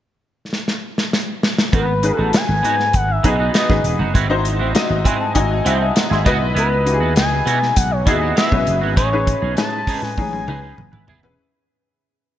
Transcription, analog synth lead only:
1.75 2.18 B4 medium
2.18 2.36 A4 medium
2.35 2.97 G#5 loud
2.95 3.12 F#5 loud
3.11 3.28 E5 medium
3.26 3.55 D#5 medium
3.56 3.98 D#5 medium
6.57 7.13 B4 medium
7.17 7.74 G#5 loud
7.74 7.93 F#5 loud
7.74 7.77 G#5 medium
7.91 8.07 C#5 medium
8.06 8.36 D#5 medium
8.37 8.79 E5 loud
8.96 9.53 C#5 loud
9.57 10.04 A5 loud
10.02 11.08 G#5 loud

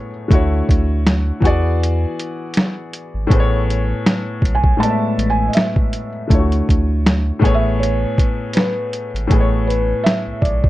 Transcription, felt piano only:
4.55 4.81 G#5 medium
4.80 5.32 A5 loud
5.30 5.50 G#5 loud
5.48 5.55 D#5 medium
5.54 6.09 E5 medium
7.54 7.81 E5 loud
7.80 8.57 C#5 medium
8.55 9.10 B4 medium
9.67 10.06 B4 medium
10.04 10.43 E5 loud
10.41 10.70 D5 medium

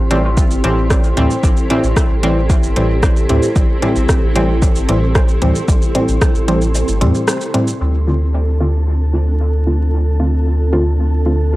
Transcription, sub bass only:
0.00 0.46 A1 medium
0.51 0.61 G1 medium
0.64 1.12 A1 medium
1.17 1.27 D2 medium
1.43 1.54 A1 loud
1.83 1.94 A1 medium
2.10 2.58 A1 loud
2.63 2.73 G1 medium
2.76 3.25 A1 medium
3.29 3.40 D2 medium
3.56 3.66 A1 loud
3.96 4.06 A1 medium
4.22 4.71 A1 loud
4.75 4.86 G1 medium
4.89 5.37 A1 medium
5.42 5.52 D2 medium
5.68 5.79 A1 loud
6.08 6.19 A1 medium
6.35 6.83 A1 loud
6.88 7.03 G1 medium
7.01 7.12 E2 medium
7.81 11.56 D2 medium

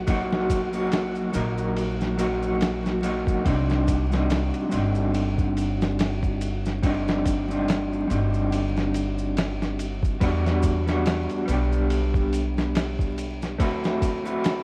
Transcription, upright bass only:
0.00 1.31 A#1 medium
1.35 3.43 A#1 medium
3.46 4.49 C2 medium
4.73 8.07 G1 loud
8.11 10.18 G1 medium
10.22 11.25 E2 loud
11.49 13.60 B1 medium
13.60 14.63 D2 medium

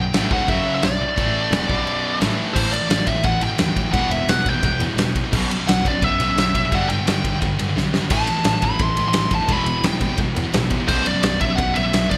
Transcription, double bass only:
0.14 0.22 A1 loud
0.31 0.39 C#2 loud
0.48 0.56 F#1 loud
0.84 0.92 B1 medium
1.01 1.09 B1 soft
1.17 1.25 A1 loud
1.51 1.59 E1 loud
1.69 1.77 B1 medium
2.21 2.29 A1 loud
2.56 2.64 A1 loud
2.90 2.98 A1 medium
3.07 3.15 A1 medium
3.24 3.32 A1 medium
3.41 3.49 A1 medium
3.59 3.67 D#2 medium
3.94 4.02 E1 loud
4.09 4.17 E1 loud
4.28 4.36 E1 loud
4.45 4.53 E1 medium
4.63 4.71 E1 loud
4.79 4.87 E2 medium
4.97 5.05 E1 medium
5.33 5.41 B1 loud
5.68 5.76 B1 medium
5.85 5.93 B1 medium
6.02 6.10 B1 loud
6.19 6.27 B1 medium
6.37 6.45 B1 medium
6.72 6.80 G1 loud
6.89 6.97 G1 medium
7.07 7.15 G1 medium
7.24 7.32 G1 medium
7.42 7.50 G1 loud
7.59 7.67 G2 medium
7.76 7.84 B1 medium
8.10 8.18 A1 loud
8.44 8.52 A1 loud
8.63 8.71 A1 medium
8.79 8.87 A1 loud
8.97 9.05 A1 medium
9.14 9.22 A1 medium
9.49 9.57 E1 loud
9.65 9.73 E1 medium
9.83 9.91 E1 medium
10.00 10.08 E1 medium
10.18 10.26 E1 loud
10.36 10.44 E2 medium
10.53 10.61 A#1 medium
10.88 10.96 B1 loud
11.23 11.31 B1 loud
11.41 11.49 B1 medium
11.58 11.66 B1 medium
11.76 11.84 B1 medium
11.93 12.01 B1 loud

